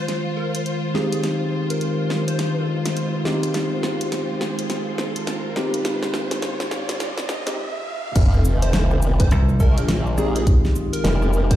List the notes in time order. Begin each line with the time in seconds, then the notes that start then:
Already playing: D#3 G#3 F4 C5, riser
0.08 snare, closed hi-hat
0.37 A#4
0.55 closed hi-hat
0.66 closed hi-hat
0.94 G#3 C4 D#4 G4 G#4, snare
1.12 G#4, closed hi-hat
1.24 snare, closed hi-hat
1.70 A#4, closed hi-hat
1.81 closed hi-hat
2.10 cross-stick, snare
2.28 C5, closed hi-hat
2.39 snare, closed hi-hat
2.86 snare, closed hi-hat
2.97 closed hi-hat
3.25 G#3 C4 D#4 G4, snare
3.43 cross-stick, closed hi-hat
3.54 snare, closed hi-hat
3.83 snare
4.01 closed hi-hat
4.12 snare, closed hi-hat
4.41 snare
4.59 closed hi-hat
4.70 snare, closed hi-hat
4.98 snare
5.16 closed hi-hat
5.27 snare, closed hi-hat
5.56 G#3 C4 D#4 G4, snare
5.74 closed hi-hat
5.85 snare, closed hi-hat
6.03 snare
6.14 snare
6.31 snare, closed hi-hat
6.42 snare, closed hi-hat
6.60 snare
6.71 snare
6.89 snare, closed hi-hat
7.00 snare, closed hi-hat
7.18 snare
7.29 snare
7.47 G#3 C4 D#4 G4, snare, closed hi-hat
8.16 F1 D#3 G#3 F4, kick, closed hi-hat, crash, sub drop, shaker
8.33 shaker
8.45 shaker
8.62 C5, closed hi-hat, shaker
8.73 F1, snare, closed hi-hat, shaker
8.91 cross-stick, shaker
9.02 shaker
9.19 C5, kick, closed hi-hat, shaker
9.31 C2, closed hi-hat, shaker
9.49 shaker
9.60 A#1 A#4, kick, shaker
9.78 closed hi-hat, shaker
9.89 snare, closed hi-hat, shaker
10.07 shaker
10.18 G#3 C4 D#4 G4 G#4, cross-stick, shaker
10.35 G#4, closed hi-hat, shaker
10.47 kick, closed hi-hat, shaker
10.65 snare, shaker
10.76 shaker
10.93 A#4, closed hi-hat, shaker
11.04 F1, snare, closed hi-hat, shaker
11.22 cross-stick, shaker
11.33 shaker
11.50 C5, kick, closed hi-hat, shaker